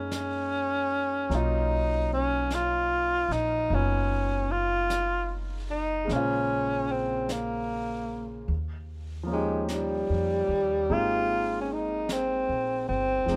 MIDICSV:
0, 0, Header, 1, 5, 480
1, 0, Start_track
1, 0, Key_signature, -4, "major"
1, 0, Tempo, 1197605
1, 523, Time_signature, 4, 2, 24, 8
1, 5356, End_track
2, 0, Start_track
2, 0, Title_t, "Grand piano"
2, 0, Program_c, 0, 0
2, 0, Control_c, 0, 64, 127
2, 0, Note_on_c, 0, 56, 35
2, 0, Note_on_c, 0, 58, 30
2, 0, Note_on_c, 0, 61, 36
2, 0, Note_on_c, 0, 63, 33
2, 0, Note_on_c, 0, 64, 39
2, 518, Note_off_c, 0, 58, 0
2, 519, Note_off_c, 0, 56, 0
2, 521, Note_on_c, 0, 54, 42
2, 523, Note_off_c, 0, 61, 0
2, 524, Note_on_c, 0, 58, 38
2, 527, Note_off_c, 0, 63, 0
2, 529, Note_off_c, 0, 64, 0
2, 529, Control_c, 0, 64, 0
2, 529, Note_on_c, 0, 61, 38
2, 534, Note_on_c, 0, 63, 43
2, 540, Note_on_c, 0, 65, 46
2, 607, Control_c, 0, 64, 127
2, 1480, Note_off_c, 0, 63, 0
2, 1483, Note_on_c, 0, 59, 36
2, 1486, Note_on_c, 0, 63, 30
2, 1488, Note_off_c, 0, 65, 0
2, 1494, Note_on_c, 0, 65, 37
2, 2423, Note_on_c, 0, 56, 44
2, 2427, Note_off_c, 0, 58, 0
2, 2433, Note_on_c, 0, 58, 41
2, 2442, Note_off_c, 0, 54, 0
2, 2443, Note_off_c, 0, 59, 0
2, 2445, Note_off_c, 0, 63, 0
2, 2445, Note_on_c, 0, 72, 39
2, 2446, Note_off_c, 0, 61, 0
2, 2448, Control_c, 0, 64, 0
2, 2449, Note_off_c, 0, 65, 0
2, 2458, Note_on_c, 0, 49, 43
2, 2469, Note_on_c, 0, 65, 50
2, 2508, Control_c, 0, 64, 127
2, 3393, Note_off_c, 0, 56, 0
2, 3399, Note_off_c, 0, 58, 0
2, 3405, Note_off_c, 0, 72, 0
2, 3409, Control_c, 0, 64, 0
2, 3411, Note_off_c, 0, 49, 0
2, 3416, Note_off_c, 0, 65, 0
2, 3472, Control_c, 0, 64, 127
2, 3701, Note_on_c, 0, 53, 45
2, 3714, Note_on_c, 0, 58, 37
2, 3723, Note_on_c, 0, 61, 40
2, 3733, Note_on_c, 0, 63, 37
2, 3745, Note_on_c, 0, 67, 52
2, 4356, Note_off_c, 0, 53, 0
2, 4361, Note_off_c, 0, 58, 0
2, 4365, Note_off_c, 0, 63, 0
2, 4367, Note_on_c, 0, 58, 38
2, 4368, Note_off_c, 0, 61, 0
2, 4368, Note_off_c, 0, 67, 0
2, 4369, Note_on_c, 0, 56, 41
2, 4370, Note_on_c, 0, 60, 36
2, 4371, Control_c, 0, 64, 0
2, 4371, Note_on_c, 0, 63, 39
2, 4374, Note_on_c, 0, 67, 43
2, 4439, Control_c, 0, 64, 127
2, 5314, Note_on_c, 0, 53, 43
2, 5315, Note_off_c, 0, 56, 0
2, 5320, Note_off_c, 0, 60, 0
2, 5321, Note_on_c, 0, 56, 38
2, 5325, Note_off_c, 0, 63, 0
2, 5326, Note_off_c, 0, 58, 0
2, 5326, Note_on_c, 0, 60, 41
2, 5329, Note_off_c, 0, 67, 0
2, 5330, Control_c, 0, 64, 0
2, 5331, Note_on_c, 0, 63, 39
2, 5335, Note_on_c, 0, 67, 44
2, 5356, Note_off_c, 0, 53, 0
2, 5356, Note_off_c, 0, 56, 0
2, 5356, Note_off_c, 0, 60, 0
2, 5356, Note_off_c, 0, 63, 0
2, 5356, Note_off_c, 0, 67, 0
2, 5356, End_track
3, 0, Start_track
3, 0, Title_t, "Tenor saxophone"
3, 0, Program_c, 1, 66
3, 0, Note_on_c, 1, 61, 83
3, 543, Note_on_c, 1, 63, 79
3, 549, Note_off_c, 1, 61, 0
3, 847, Note_off_c, 1, 63, 0
3, 854, Note_on_c, 1, 61, 77
3, 1019, Note_on_c, 1, 65, 74
3, 1025, Note_off_c, 1, 61, 0
3, 1332, Note_on_c, 1, 63, 83
3, 1338, Note_off_c, 1, 65, 0
3, 1499, Note_on_c, 1, 61, 72
3, 1505, Note_off_c, 1, 63, 0
3, 1810, Note_on_c, 1, 65, 87
3, 1816, Note_off_c, 1, 61, 0
3, 2142, Note_off_c, 1, 65, 0
3, 2288, Note_on_c, 1, 63, 71
3, 2455, Note_on_c, 1, 61, 72
3, 2461, Note_off_c, 1, 63, 0
3, 2770, Note_on_c, 1, 60, 59
3, 2776, Note_off_c, 1, 61, 0
3, 2934, Note_on_c, 1, 58, 58
3, 2940, Note_off_c, 1, 60, 0
3, 3409, Note_off_c, 1, 58, 0
3, 3737, Note_on_c, 1, 56, 67
3, 3883, Note_off_c, 1, 56, 0
3, 3904, Note_on_c, 1, 55, 75
3, 4380, Note_on_c, 1, 65, 80
3, 4386, Note_off_c, 1, 55, 0
3, 4651, Note_off_c, 1, 65, 0
3, 4653, Note_on_c, 1, 61, 51
3, 4699, Note_on_c, 1, 63, 70
3, 4705, Note_off_c, 1, 61, 0
3, 4858, Note_on_c, 1, 60, 61
3, 4864, Note_off_c, 1, 63, 0
3, 5163, Note_off_c, 1, 60, 0
3, 5165, Note_on_c, 1, 60, 76
3, 5356, Note_off_c, 1, 60, 0
3, 5356, End_track
4, 0, Start_track
4, 0, Title_t, "Upright bass"
4, 0, Program_c, 2, 32
4, 0, Note_on_c, 2, 42, 57
4, 504, Note_off_c, 2, 42, 0
4, 520, Note_on_c, 2, 35, 57
4, 1300, Note_off_c, 2, 35, 0
4, 1317, Note_on_c, 2, 34, 50
4, 1471, Note_off_c, 2, 34, 0
4, 1484, Note_on_c, 2, 30, 60
4, 2428, Note_off_c, 2, 30, 0
4, 2440, Note_on_c, 2, 34, 55
4, 3386, Note_off_c, 2, 34, 0
4, 3399, Note_on_c, 2, 39, 59
4, 4026, Note_off_c, 2, 39, 0
4, 4046, Note_on_c, 2, 41, 49
4, 4195, Note_off_c, 2, 41, 0
4, 4202, Note_on_c, 2, 39, 54
4, 4353, Note_off_c, 2, 39, 0
4, 4367, Note_on_c, 2, 32, 60
4, 4990, Note_off_c, 2, 32, 0
4, 5006, Note_on_c, 2, 34, 44
4, 5154, Note_off_c, 2, 34, 0
4, 5166, Note_on_c, 2, 31, 56
4, 5314, Note_off_c, 2, 31, 0
4, 5318, Note_on_c, 2, 29, 51
4, 5356, Note_off_c, 2, 29, 0
4, 5356, End_track
5, 0, Start_track
5, 0, Title_t, "Drums"
5, 46, Note_on_c, 9, 25, 33
5, 46, Note_on_c, 9, 38, 34
5, 46, Note_on_c, 9, 44, 44
5, 86, Note_off_c, 9, 38, 0
5, 86, Note_off_c, 9, 44, 0
5, 525, Note_off_c, 9, 25, 0
5, 525, Note_on_c, 9, 25, 24
5, 525, Note_on_c, 9, 38, 22
5, 565, Note_off_c, 9, 38, 0
5, 1003, Note_off_c, 9, 25, 0
5, 1003, Note_on_c, 9, 25, 26
5, 1003, Note_on_c, 9, 38, 31
5, 1003, Note_on_c, 9, 44, 36
5, 1044, Note_off_c, 9, 38, 0
5, 1044, Note_off_c, 9, 44, 0
5, 1327, Note_on_c, 9, 38, 22
5, 1367, Note_off_c, 9, 38, 0
5, 1485, Note_off_c, 9, 25, 0
5, 1485, Note_on_c, 9, 25, 27
5, 1964, Note_off_c, 9, 25, 0
5, 1964, Note_on_c, 9, 25, 36
5, 1964, Note_on_c, 9, 38, 34
5, 1964, Note_on_c, 9, 44, 46
5, 2004, Note_off_c, 9, 38, 0
5, 2004, Note_off_c, 9, 44, 0
5, 2442, Note_off_c, 9, 25, 0
5, 2442, Note_on_c, 9, 25, 32
5, 2442, Note_on_c, 9, 38, 23
5, 2482, Note_off_c, 9, 38, 0
5, 2921, Note_off_c, 9, 25, 0
5, 2921, Note_on_c, 9, 25, 27
5, 2921, Note_on_c, 9, 38, 34
5, 2921, Note_on_c, 9, 44, 43
5, 2962, Note_off_c, 9, 38, 0
5, 2962, Note_off_c, 9, 44, 0
5, 3404, Note_off_c, 9, 25, 0
5, 3404, Note_on_c, 9, 25, 22
5, 3882, Note_off_c, 9, 25, 0
5, 3882, Note_on_c, 9, 25, 33
5, 3882, Note_on_c, 9, 38, 34
5, 3882, Note_on_c, 9, 44, 43
5, 3922, Note_off_c, 9, 38, 0
5, 3922, Note_off_c, 9, 44, 0
5, 4363, Note_off_c, 9, 25, 0
5, 4363, Note_on_c, 9, 25, 29
5, 4845, Note_off_c, 9, 25, 0
5, 4845, Note_on_c, 9, 25, 23
5, 4845, Note_on_c, 9, 38, 37
5, 4845, Note_on_c, 9, 44, 41
5, 4886, Note_off_c, 9, 38, 0
5, 4886, Note_off_c, 9, 44, 0
5, 5323, Note_off_c, 9, 25, 0
5, 5323, Note_on_c, 9, 25, 29
5, 5323, Note_on_c, 9, 38, 19
5, 5356, Note_off_c, 9, 25, 0
5, 5356, Note_off_c, 9, 38, 0
5, 5356, End_track
0, 0, End_of_file